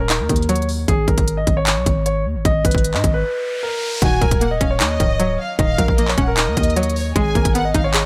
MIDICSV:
0, 0, Header, 1, 7, 480
1, 0, Start_track
1, 0, Key_signature, -6, "minor"
1, 0, Tempo, 392157
1, 1080, Time_signature, 4, 2, 24, 8
1, 9861, End_track
2, 0, Start_track
2, 0, Title_t, "Violin section"
2, 0, Program_c, 0, 48
2, 4922, Note_on_c, 0, 80, 112
2, 5372, Note_off_c, 0, 80, 0
2, 5399, Note_on_c, 0, 78, 81
2, 5627, Note_off_c, 0, 78, 0
2, 5640, Note_on_c, 0, 77, 75
2, 5868, Note_off_c, 0, 77, 0
2, 5878, Note_on_c, 0, 75, 103
2, 6556, Note_off_c, 0, 75, 0
2, 6604, Note_on_c, 0, 77, 83
2, 6830, Note_off_c, 0, 77, 0
2, 6843, Note_on_c, 0, 77, 114
2, 7292, Note_off_c, 0, 77, 0
2, 7318, Note_on_c, 0, 75, 91
2, 7547, Note_off_c, 0, 75, 0
2, 7561, Note_on_c, 0, 78, 83
2, 7789, Note_off_c, 0, 78, 0
2, 7803, Note_on_c, 0, 75, 98
2, 8479, Note_off_c, 0, 75, 0
2, 8515, Note_on_c, 0, 73, 81
2, 8745, Note_off_c, 0, 73, 0
2, 8759, Note_on_c, 0, 80, 110
2, 9210, Note_off_c, 0, 80, 0
2, 9245, Note_on_c, 0, 78, 96
2, 9471, Note_off_c, 0, 78, 0
2, 9482, Note_on_c, 0, 77, 93
2, 9709, Note_off_c, 0, 77, 0
2, 9721, Note_on_c, 0, 75, 92
2, 9861, Note_off_c, 0, 75, 0
2, 9861, End_track
3, 0, Start_track
3, 0, Title_t, "Grand piano"
3, 0, Program_c, 1, 0
3, 0, Note_on_c, 1, 70, 87
3, 564, Note_off_c, 1, 70, 0
3, 600, Note_on_c, 1, 73, 85
3, 812, Note_off_c, 1, 73, 0
3, 1078, Note_on_c, 1, 68, 101
3, 1290, Note_off_c, 1, 68, 0
3, 1319, Note_on_c, 1, 70, 76
3, 1658, Note_off_c, 1, 70, 0
3, 1680, Note_on_c, 1, 75, 80
3, 1891, Note_off_c, 1, 75, 0
3, 1920, Note_on_c, 1, 73, 92
3, 2484, Note_off_c, 1, 73, 0
3, 2521, Note_on_c, 1, 73, 82
3, 2732, Note_off_c, 1, 73, 0
3, 3000, Note_on_c, 1, 75, 107
3, 3212, Note_off_c, 1, 75, 0
3, 3240, Note_on_c, 1, 71, 87
3, 3578, Note_off_c, 1, 71, 0
3, 3601, Note_on_c, 1, 75, 80
3, 3812, Note_off_c, 1, 75, 0
3, 3841, Note_on_c, 1, 71, 86
3, 4404, Note_off_c, 1, 71, 0
3, 4441, Note_on_c, 1, 70, 81
3, 4892, Note_off_c, 1, 70, 0
3, 4920, Note_on_c, 1, 66, 93
3, 5132, Note_off_c, 1, 66, 0
3, 5160, Note_on_c, 1, 70, 89
3, 5499, Note_off_c, 1, 70, 0
3, 5520, Note_on_c, 1, 75, 87
3, 5731, Note_off_c, 1, 75, 0
3, 5759, Note_on_c, 1, 73, 88
3, 6324, Note_off_c, 1, 73, 0
3, 6360, Note_on_c, 1, 73, 84
3, 6571, Note_off_c, 1, 73, 0
3, 6840, Note_on_c, 1, 75, 96
3, 7051, Note_off_c, 1, 75, 0
3, 7080, Note_on_c, 1, 70, 86
3, 7418, Note_off_c, 1, 70, 0
3, 7442, Note_on_c, 1, 73, 80
3, 7652, Note_off_c, 1, 73, 0
3, 7681, Note_on_c, 1, 70, 88
3, 8244, Note_off_c, 1, 70, 0
3, 8282, Note_on_c, 1, 73, 88
3, 8492, Note_off_c, 1, 73, 0
3, 8760, Note_on_c, 1, 68, 105
3, 8971, Note_off_c, 1, 68, 0
3, 9001, Note_on_c, 1, 70, 78
3, 9339, Note_off_c, 1, 70, 0
3, 9360, Note_on_c, 1, 75, 78
3, 9571, Note_off_c, 1, 75, 0
3, 9599, Note_on_c, 1, 73, 96
3, 9861, Note_off_c, 1, 73, 0
3, 9861, End_track
4, 0, Start_track
4, 0, Title_t, "Synth pluck"
4, 0, Program_c, 2, 84
4, 0, Note_on_c, 2, 51, 89
4, 0, Note_on_c, 2, 54, 78
4, 0, Note_on_c, 2, 58, 82
4, 0, Note_on_c, 2, 61, 103
4, 120, Note_on_c, 2, 63, 83
4, 346, Note_off_c, 2, 51, 0
4, 360, Note_on_c, 2, 51, 70
4, 585, Note_off_c, 2, 54, 0
4, 599, Note_on_c, 2, 54, 94
4, 840, Note_off_c, 2, 58, 0
4, 1080, Note_off_c, 2, 51, 0
4, 1080, Note_off_c, 2, 54, 0
4, 1080, Note_off_c, 2, 61, 0
4, 1080, Note_off_c, 2, 63, 0
4, 4921, Note_on_c, 2, 51, 84
4, 5160, Note_on_c, 2, 54, 75
4, 5400, Note_on_c, 2, 58, 82
4, 5640, Note_on_c, 2, 61, 104
4, 5880, Note_on_c, 2, 63, 89
4, 6105, Note_off_c, 2, 51, 0
4, 6120, Note_on_c, 2, 51, 79
4, 6345, Note_off_c, 2, 54, 0
4, 6359, Note_on_c, 2, 54, 93
4, 6600, Note_off_c, 2, 58, 0
4, 6825, Note_off_c, 2, 51, 0
4, 6840, Note_off_c, 2, 61, 0
4, 6840, Note_on_c, 2, 51, 92
4, 7066, Note_off_c, 2, 54, 0
4, 7080, Note_off_c, 2, 63, 0
4, 7080, Note_on_c, 2, 54, 75
4, 7320, Note_on_c, 2, 58, 84
4, 7560, Note_on_c, 2, 61, 105
4, 7800, Note_on_c, 2, 63, 84
4, 8026, Note_off_c, 2, 51, 0
4, 8040, Note_on_c, 2, 51, 77
4, 8265, Note_off_c, 2, 54, 0
4, 8280, Note_on_c, 2, 54, 95
4, 8520, Note_off_c, 2, 58, 0
4, 8760, Note_off_c, 2, 51, 0
4, 8760, Note_off_c, 2, 54, 0
4, 8760, Note_off_c, 2, 61, 0
4, 8760, Note_off_c, 2, 63, 0
4, 8760, Note_on_c, 2, 56, 100
4, 9000, Note_on_c, 2, 58, 70
4, 9240, Note_on_c, 2, 59, 87
4, 9480, Note_on_c, 2, 63, 105
4, 9719, Note_on_c, 2, 68, 88
4, 9861, Note_off_c, 2, 56, 0
4, 9861, Note_off_c, 2, 58, 0
4, 9861, Note_off_c, 2, 59, 0
4, 9861, Note_off_c, 2, 63, 0
4, 9861, Note_off_c, 2, 68, 0
4, 9861, End_track
5, 0, Start_track
5, 0, Title_t, "808-style bass"
5, 0, Program_c, 3, 38
5, 0, Note_on_c, 3, 27, 112
5, 240, Note_on_c, 3, 39, 99
5, 258, Note_off_c, 3, 27, 0
5, 354, Note_off_c, 3, 39, 0
5, 360, Note_on_c, 3, 39, 104
5, 1051, Note_off_c, 3, 39, 0
5, 1080, Note_on_c, 3, 32, 110
5, 1310, Note_off_c, 3, 32, 0
5, 1319, Note_on_c, 3, 32, 107
5, 1780, Note_off_c, 3, 32, 0
5, 1800, Note_on_c, 3, 32, 110
5, 2159, Note_on_c, 3, 35, 103
5, 2178, Note_off_c, 3, 32, 0
5, 2274, Note_off_c, 3, 35, 0
5, 2281, Note_on_c, 3, 32, 108
5, 2760, Note_on_c, 3, 39, 101
5, 2778, Note_off_c, 3, 32, 0
5, 2880, Note_on_c, 3, 32, 98
5, 2898, Note_off_c, 3, 39, 0
5, 2994, Note_off_c, 3, 32, 0
5, 3000, Note_on_c, 3, 32, 110
5, 3230, Note_off_c, 3, 32, 0
5, 3239, Note_on_c, 3, 32, 110
5, 3600, Note_on_c, 3, 44, 100
5, 3618, Note_off_c, 3, 32, 0
5, 3714, Note_off_c, 3, 44, 0
5, 3720, Note_on_c, 3, 32, 109
5, 3960, Note_off_c, 3, 32, 0
5, 4920, Note_on_c, 3, 27, 111
5, 5150, Note_off_c, 3, 27, 0
5, 5159, Note_on_c, 3, 27, 105
5, 5620, Note_off_c, 3, 27, 0
5, 5640, Note_on_c, 3, 27, 112
5, 5880, Note_on_c, 3, 39, 101
5, 5898, Note_off_c, 3, 27, 0
5, 6108, Note_off_c, 3, 39, 0
5, 6121, Note_on_c, 3, 25, 108
5, 6581, Note_off_c, 3, 25, 0
5, 6840, Note_on_c, 3, 27, 109
5, 7070, Note_off_c, 3, 27, 0
5, 7080, Note_on_c, 3, 34, 108
5, 7541, Note_off_c, 3, 34, 0
5, 7560, Note_on_c, 3, 27, 108
5, 7920, Note_on_c, 3, 39, 103
5, 7938, Note_off_c, 3, 27, 0
5, 8034, Note_off_c, 3, 39, 0
5, 8041, Note_on_c, 3, 39, 104
5, 8732, Note_off_c, 3, 39, 0
5, 8760, Note_on_c, 3, 32, 109
5, 8990, Note_off_c, 3, 32, 0
5, 8999, Note_on_c, 3, 32, 109
5, 9460, Note_off_c, 3, 32, 0
5, 9480, Note_on_c, 3, 32, 112
5, 9858, Note_off_c, 3, 32, 0
5, 9861, End_track
6, 0, Start_track
6, 0, Title_t, "Riser"
6, 0, Program_c, 4, 103
6, 3000, Note_on_c, 4, 60, 85
6, 4920, Note_off_c, 4, 60, 0
6, 9861, End_track
7, 0, Start_track
7, 0, Title_t, "Drums"
7, 119, Note_on_c, 9, 39, 113
7, 122, Note_on_c, 9, 42, 71
7, 241, Note_off_c, 9, 39, 0
7, 244, Note_off_c, 9, 42, 0
7, 359, Note_on_c, 9, 42, 73
7, 361, Note_on_c, 9, 36, 89
7, 439, Note_off_c, 9, 42, 0
7, 439, Note_on_c, 9, 42, 59
7, 483, Note_off_c, 9, 36, 0
7, 519, Note_off_c, 9, 42, 0
7, 519, Note_on_c, 9, 42, 44
7, 600, Note_off_c, 9, 42, 0
7, 600, Note_on_c, 9, 42, 76
7, 680, Note_off_c, 9, 42, 0
7, 680, Note_on_c, 9, 42, 62
7, 760, Note_off_c, 9, 42, 0
7, 760, Note_on_c, 9, 42, 43
7, 841, Note_on_c, 9, 46, 53
7, 882, Note_off_c, 9, 42, 0
7, 963, Note_off_c, 9, 46, 0
7, 1080, Note_on_c, 9, 36, 109
7, 1080, Note_on_c, 9, 42, 69
7, 1202, Note_off_c, 9, 36, 0
7, 1202, Note_off_c, 9, 42, 0
7, 1319, Note_on_c, 9, 36, 92
7, 1320, Note_on_c, 9, 42, 52
7, 1440, Note_off_c, 9, 36, 0
7, 1440, Note_off_c, 9, 42, 0
7, 1440, Note_on_c, 9, 36, 98
7, 1440, Note_on_c, 9, 42, 83
7, 1562, Note_off_c, 9, 42, 0
7, 1562, Note_on_c, 9, 42, 82
7, 1563, Note_off_c, 9, 36, 0
7, 1684, Note_off_c, 9, 42, 0
7, 1800, Note_on_c, 9, 36, 95
7, 1800, Note_on_c, 9, 42, 73
7, 1922, Note_off_c, 9, 42, 0
7, 1923, Note_off_c, 9, 36, 0
7, 2039, Note_on_c, 9, 39, 116
7, 2042, Note_on_c, 9, 42, 73
7, 2161, Note_off_c, 9, 39, 0
7, 2164, Note_off_c, 9, 42, 0
7, 2279, Note_on_c, 9, 42, 70
7, 2281, Note_on_c, 9, 36, 88
7, 2402, Note_off_c, 9, 42, 0
7, 2403, Note_off_c, 9, 36, 0
7, 2520, Note_on_c, 9, 42, 73
7, 2642, Note_off_c, 9, 42, 0
7, 3000, Note_on_c, 9, 36, 114
7, 3000, Note_on_c, 9, 42, 69
7, 3122, Note_off_c, 9, 36, 0
7, 3122, Note_off_c, 9, 42, 0
7, 3239, Note_on_c, 9, 36, 96
7, 3240, Note_on_c, 9, 42, 86
7, 3320, Note_off_c, 9, 42, 0
7, 3320, Note_on_c, 9, 42, 66
7, 3360, Note_off_c, 9, 36, 0
7, 3360, Note_on_c, 9, 36, 102
7, 3400, Note_off_c, 9, 42, 0
7, 3400, Note_on_c, 9, 42, 50
7, 3482, Note_off_c, 9, 42, 0
7, 3482, Note_on_c, 9, 42, 83
7, 3483, Note_off_c, 9, 36, 0
7, 3600, Note_on_c, 9, 39, 74
7, 3604, Note_off_c, 9, 42, 0
7, 3719, Note_on_c, 9, 42, 73
7, 3720, Note_on_c, 9, 36, 93
7, 3722, Note_off_c, 9, 39, 0
7, 3841, Note_off_c, 9, 42, 0
7, 3843, Note_off_c, 9, 36, 0
7, 4920, Note_on_c, 9, 36, 113
7, 4920, Note_on_c, 9, 42, 68
7, 5042, Note_off_c, 9, 36, 0
7, 5042, Note_off_c, 9, 42, 0
7, 5159, Note_on_c, 9, 36, 96
7, 5159, Note_on_c, 9, 42, 53
7, 5279, Note_off_c, 9, 42, 0
7, 5279, Note_on_c, 9, 42, 89
7, 5280, Note_off_c, 9, 36, 0
7, 5280, Note_on_c, 9, 36, 102
7, 5402, Note_off_c, 9, 42, 0
7, 5402, Note_on_c, 9, 42, 84
7, 5403, Note_off_c, 9, 36, 0
7, 5524, Note_off_c, 9, 42, 0
7, 5639, Note_on_c, 9, 42, 75
7, 5640, Note_on_c, 9, 36, 95
7, 5762, Note_off_c, 9, 42, 0
7, 5763, Note_off_c, 9, 36, 0
7, 5879, Note_on_c, 9, 39, 119
7, 5882, Note_on_c, 9, 42, 76
7, 6001, Note_off_c, 9, 39, 0
7, 6004, Note_off_c, 9, 42, 0
7, 6119, Note_on_c, 9, 42, 72
7, 6121, Note_on_c, 9, 36, 95
7, 6242, Note_off_c, 9, 42, 0
7, 6243, Note_off_c, 9, 36, 0
7, 6360, Note_on_c, 9, 42, 77
7, 6482, Note_off_c, 9, 42, 0
7, 6840, Note_on_c, 9, 36, 122
7, 6840, Note_on_c, 9, 42, 67
7, 6962, Note_off_c, 9, 36, 0
7, 6962, Note_off_c, 9, 42, 0
7, 7079, Note_on_c, 9, 36, 97
7, 7080, Note_on_c, 9, 42, 83
7, 7201, Note_off_c, 9, 36, 0
7, 7201, Note_on_c, 9, 36, 102
7, 7203, Note_off_c, 9, 42, 0
7, 7322, Note_on_c, 9, 42, 85
7, 7323, Note_off_c, 9, 36, 0
7, 7440, Note_on_c, 9, 39, 76
7, 7445, Note_off_c, 9, 42, 0
7, 7559, Note_on_c, 9, 42, 74
7, 7560, Note_on_c, 9, 36, 98
7, 7563, Note_off_c, 9, 39, 0
7, 7682, Note_off_c, 9, 42, 0
7, 7683, Note_off_c, 9, 36, 0
7, 7799, Note_on_c, 9, 39, 121
7, 7802, Note_on_c, 9, 42, 73
7, 7921, Note_off_c, 9, 39, 0
7, 7924, Note_off_c, 9, 42, 0
7, 8040, Note_on_c, 9, 42, 75
7, 8041, Note_on_c, 9, 36, 91
7, 8120, Note_off_c, 9, 42, 0
7, 8120, Note_on_c, 9, 42, 58
7, 8163, Note_off_c, 9, 36, 0
7, 8200, Note_off_c, 9, 42, 0
7, 8200, Note_on_c, 9, 42, 43
7, 8280, Note_off_c, 9, 42, 0
7, 8280, Note_on_c, 9, 42, 78
7, 8360, Note_off_c, 9, 42, 0
7, 8360, Note_on_c, 9, 42, 60
7, 8440, Note_off_c, 9, 42, 0
7, 8440, Note_on_c, 9, 42, 45
7, 8521, Note_on_c, 9, 46, 53
7, 8562, Note_off_c, 9, 42, 0
7, 8643, Note_off_c, 9, 46, 0
7, 8760, Note_on_c, 9, 36, 119
7, 8760, Note_on_c, 9, 42, 67
7, 8882, Note_off_c, 9, 36, 0
7, 8882, Note_off_c, 9, 42, 0
7, 8999, Note_on_c, 9, 36, 100
7, 9000, Note_on_c, 9, 42, 53
7, 9120, Note_off_c, 9, 42, 0
7, 9120, Note_on_c, 9, 42, 90
7, 9121, Note_off_c, 9, 36, 0
7, 9121, Note_on_c, 9, 36, 103
7, 9241, Note_off_c, 9, 42, 0
7, 9241, Note_on_c, 9, 42, 83
7, 9243, Note_off_c, 9, 36, 0
7, 9364, Note_off_c, 9, 42, 0
7, 9479, Note_on_c, 9, 42, 75
7, 9480, Note_on_c, 9, 36, 100
7, 9602, Note_off_c, 9, 42, 0
7, 9603, Note_off_c, 9, 36, 0
7, 9719, Note_on_c, 9, 39, 122
7, 9721, Note_on_c, 9, 42, 75
7, 9841, Note_off_c, 9, 39, 0
7, 9844, Note_off_c, 9, 42, 0
7, 9861, End_track
0, 0, End_of_file